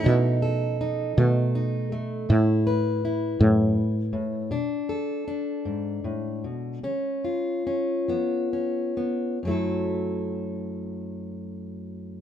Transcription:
<<
  \new Staff \with { instrumentName = "Steel-string acoustic guitar" } { \time 6/8 \key fis \minor \tempo 4. = 52 << { dis'8 a'8 dis'8 a8 dis'8 a8 | e'8 b'8 e'2 | d'8 a'8 d'2 | cis'8 eis'8 cis'8 b8 cis'8 b8 |
<fis a e' a'>2. | } \\ { b,4 r8 dis4 r8 | a,4 r8 fis,8 r8 a,8 | b,4 r8 gis,8 a,8 b,8 | cis4 r8 eis4 r8 |
fis,2. | } >> }
  \new Staff \with { instrumentName = "Fretless electric bass" } { \clef bass \time 6/8 \key fis \minor b,4. b,4. | a,4. a,4. | r2. | r2. |
r2. | }
>>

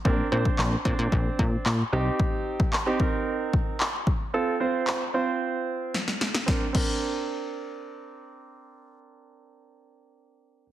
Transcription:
<<
  \new Staff \with { instrumentName = "Grand piano" } { \time 4/4 \key bes \major \tempo 4 = 112 <c' d' bes'>8 <c' d' c''>8. r16 <c' d' c''>4. r8 <c' ees' g'>8~ | <c' ees' g'>4 r16 <c' ees' g'>16 <c' ees' bes'>4. r4 | <c' f' a'>8 <c' f' c''>8. r16 <c' f' c''>4. r4 | <c' d' bes'>16 r16 <c' d' bes'>2.~ <c' d' bes'>8~ |
<c' d' bes'>1 | }
  \new Staff \with { instrumentName = "Analog synth bass" } { \clef bass \time 4/4 \key bes \major bes,,8 bes,8 bes,,8 bes,16 bes,16 bes,,8 bes,8 bes,8 c,8 | r1 | r1 | r1 |
r1 | }
  \new DrumStaff \with { instrumentName = "Drums" } \drummode { \time 4/4 bd8. bd16 hc8 bd8 bd8 bd8 hc4 | bd8. bd16 hc8 bd8 r8 bd8 hc8 bd8 | r4 hc4 r4 sn16 sn16 sn16 sn16 | <bd sn>8 <cymc bd>8 r4 r4 r4 |
r4 r4 r4 r4 | }
>>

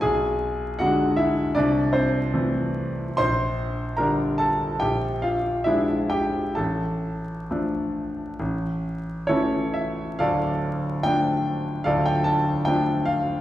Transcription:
<<
  \new Staff \with { instrumentName = "Grand piano" } { \time 4/4 \key d \minor \tempo 4 = 73 <gis' gis''>4 <fis' fis''>8 <e' e''>8 <d' d''>8 <c' c''>4. | <c'' c'''>4 <bes' bes''>8 <a' a''>8 <g' g''>8 <f' f''>8 <e' e''>8 <g' g''>8 | <a' a''>2. <e' a' cis''>8 e''8 | <a' d'' f''>4 g''4 <a' d'' f''>16 g''16 a''8 g''8 f''8 | }
  \new Staff \with { instrumentName = "Grand piano" } { \clef bass \time 4/4 \key d \minor b,,4 <d gis d'>4 c,4 <e a c'>4 | bes,,4 <d g d'>4 bes,,4 <f aes d'>4 | a,,4 <f a d'>4 a,,4 <e a cis'>4 | <d,, d,>4 <f a d'>4 <d,, d,>4 <f a d'>4 | }
>>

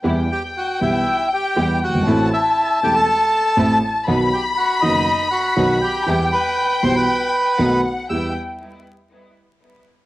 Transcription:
<<
  \new Staff \with { instrumentName = "Violin section" } { \time 4/4 \key e \minor \tempo 4 = 119 g''1 | a''1 | b''1 | g''2. fis''4 |
g''8 r2. r8 | }
  \new Staff \with { instrumentName = "Bandoneon" } { \time 4/4 \key e \minor r8 <g' g''>8 <fis' fis''>8 <e' e''>4 <g' g''>4 <fis' fis''>8~ | <fis' fis''>8 <e' e''>4 <g' g''>16 <a' a''>4.~ <a' a''>16 r8 | r8 <g' g''>8 <fis' fis''>8 <dis' dis''>4 <fis' fis''>4 <g' g''>8~ | <g' g''>8 <b' b''>4 <c'' c'''>16 <b' b''>4.~ <b' b''>16 r8 |
e'''8 r2. r8 | }
  \new Staff \with { instrumentName = "String section" } { \time 4/4 \key e \minor <g b e'>8 r4 <g b e'>8 r4 <g b e'>8 r8 | <a c' e'>8 r4 <a c' e'>8 r4 <a c' e'>8 r8 | <fis b dis'>8 r4 <fis b dis'>8 r4 <fis b dis'>8 r8 | <g b e'>8 r4 <g b e'>8 r4 <a b dis'>8 r8 |
<g b e'>8 r2. r8 | }
  \new Staff \with { instrumentName = "Grand piano" } { \clef bass \time 4/4 \key e \minor <e, e g b g'>8 r4 <b,, b, e g b g'>8 r4 <e, e g b g'>8 r32 fis,,32 g,,32 gis,,32 | <a,, a, e a c' a'>8 r4 <e,, e, e a c' a'>8 r4 <a,, a, e a c' a'>8 r8 | <b,, b, dis fis b fis'>8 r4 <fis,, fis, dis fis b fis'>8 r4 <b,, b, dis fis b fis'>8 r8 | <e, e g b g'>8 r4 <b,, b, e g b g'>8 r4 <b,, b, dis a b fis'>8 r8 |
<e, b e' g'>8 r2. r8 | }
>>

